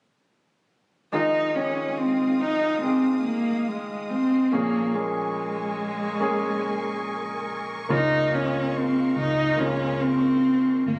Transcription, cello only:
1.14 1.57 D#4 medium
1.55 1.99 C#4 medium
1.98 2.42 C4 medium
2.40 2.81 D#4 medium
2.81 3.21 C4 medium
3.25 3.69 A#3 medium
3.68 4.11 G#3 medium
4.10 4.53 C4 medium
4.52 4.96 A#3 medium
4.94 7.48 G#3 medium
7.93 8.36 D#4 medium
8.34 8.78 C#4 medium
8.77 9.17 C4 medium
9.18 9.61 D#4 medium
9.60 10.04 C#4 medium
10.03 10.86 C4 medium
10.86 10.99 A#3 medium

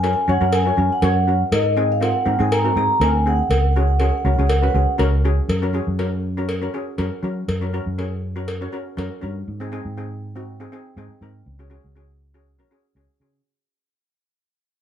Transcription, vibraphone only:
0.05 0.12 G#5 medium
0.13 0.20 G#5 medium
0.30 0.55 F#5 loud
0.54 0.93 G#5 loud
0.93 1.03 F#5 medium
1.05 1.39 F#5 medium
1.53 1.92 D#5 medium
1.92 2.02 F5 loud
2.03 2.41 F#5 loud
2.41 2.52 G#5 medium
2.52 2.75 A#5 medium
2.77 3.02 A#5 loud
3.02 3.27 G#5 loud
3.27 3.34 F#5 medium
3.36 3.42 F#5 medium
3.43 3.48 F#5 medium
3.50 3.56 F#5 medium
3.57 3.64 F#5 medium
3.66 3.71 F#5 medium
3.73 3.79 F#5 medium
3.80 3.86 F#5 medium
3.87 3.94 F#5 medium
3.95 4.01 F#5 medium
4.02 4.08 F#5 medium
4.10 4.16 F#5 soft
4.17 4.23 F#5 medium
4.25 4.31 F#5 soft
4.34 4.39 F#5 medium
4.40 4.46 F#5 medium
4.47 4.53 F#5 medium
4.54 4.60 F#5 medium
4.61 4.67 F#5 medium
4.68 4.74 F#5 medium
4.76 4.83 F#5 medium

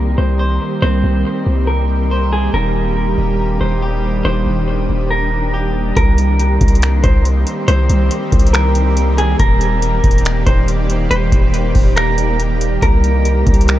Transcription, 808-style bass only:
0.00 0.16 C2 loud
0.18 0.59 C2 loud
0.82 1.03 C2 loud
1.04 1.24 C2 medium
1.47 2.50 C2 loud
2.54 3.15 D#1 loud
3.18 3.59 D#1 loud
3.61 4.23 D#1 loud
4.25 4.46 D#1 loud
4.47 4.88 D#1 loud
4.89 5.93 D#1 loud
5.97 6.58 C2 loud
6.61 7.02 C2 loud
7.04 7.45 C2 loud
7.68 7.89 C2 loud
7.89 8.10 C2 loud
8.32 9.36 C2 loud
9.39 10.01 D#1 loud
10.04 10.45 D#1 loud
10.47 11.08 D#1 loud
11.11 11.31 D#1 loud
11.32 11.73 D#1 loud
11.75 12.78 D#1 loud
12.82 13.44 C2 loud
13.47 13.79 C2 loud

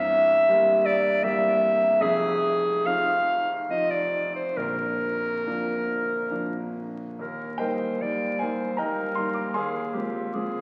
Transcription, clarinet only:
0.00 0.87 E5 loud
0.86 1.25 D5 loud
1.23 2.03 E5 loud
2.02 2.88 G#4 medium
2.86 3.53 F5 loud
3.70 3.92 D#5 medium
3.90 4.34 D5 medium
4.36 4.59 C5 medium
4.57 6.75 A#4 medium
7.20 7.61 A#4 medium
7.59 8.03 C5 medium
8.02 8.41 D5 medium
8.40 8.80 C5 medium
8.79 9.57 A#4 medium
9.56 9.96 G#4 medium
9.95 10.34 G4 medium
10.34 10.61 G#4 medium

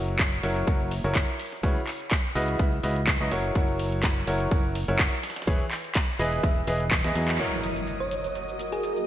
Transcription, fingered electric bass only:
0.00 0.41 F#1 medium
0.43 0.65 F#1 medium
0.67 1.02 F#1 loud
1.04 1.24 F#1 loud
1.63 1.76 C#2 loud
2.35 2.57 C#2 medium
2.59 2.81 C#2 medium
2.83 3.18 C#2 medium
3.20 3.29 C#2 loud
3.31 3.53 F#1 medium
3.55 4.25 F#1 loud
4.27 4.49 F#1 medium
4.51 4.86 F#1 medium
4.88 5.08 F#1 loud
5.47 5.60 E1 loud
6.19 6.41 E1 loud
6.43 6.65 E1 loud
6.67 7.02 E1 loud
7.04 7.13 E2 loud
7.15 7.37 E2 loud

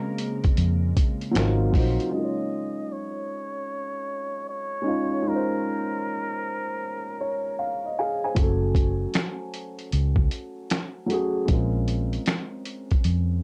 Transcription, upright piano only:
0.00 0.26 G#3 medium
0.00 0.26 C4 medium
0.00 0.27 C#4 medium
0.00 0.28 F4 medium
0.00 0.29 A#4 medium
1.31 1.67 F#3 medium
1.31 1.68 C4 medium
1.31 1.68 D#4 medium
1.36 1.69 F4 medium
1.36 1.70 A#4 medium
1.72 2.07 F#3 medium
1.72 2.07 C4 medium
1.72 2.08 D#4 medium
1.77 2.09 F4 medium
1.77 2.10 C5 medium
2.11 3.38 G#3 medium
2.11 3.39 C#4 medium
2.11 3.39 D#4 medium
2.16 3.40 F4 medium
2.16 2.24 A#4 medium
2.24 3.44 C#5 medium
4.82 5.17 G#3 medium
4.82 5.18 C#4 medium
4.82 5.19 D#4 medium
4.87 5.20 F4 medium
4.87 5.21 C#5 medium
5.22 6.49 G#3 medium
5.22 6.50 C#4 medium
5.22 6.51 D#4 medium
5.27 6.52 F4 medium
5.27 5.35 A#4 medium
5.36 6.56 C5 medium
7.21 7.56 C#5 medium
7.59 7.95 F5 medium
7.85 7.97 D#5 medium
7.99 8.23 G#4 medium
7.99 8.22 F5 medium
7.99 8.23 G#5 medium
8.24 8.61 C5 soft
8.24 8.61 G#5 medium
8.35 9.61 F#3 medium
8.35 9.62 A3 medium
8.35 9.63 C#4 medium
8.40 9.64 F#4 medium
8.40 9.65 A4 medium
11.06 11.41 F#3 medium
11.06 11.42 A3 medium
11.06 11.43 C#4 medium
11.11 11.43 F#4 medium
11.11 11.44 G#4 medium
11.45 12.72 G#3 medium
11.45 12.73 C4 medium
11.45 12.74 C#4 medium
11.50 12.75 F4 medium
11.50 12.76 A#4 medium

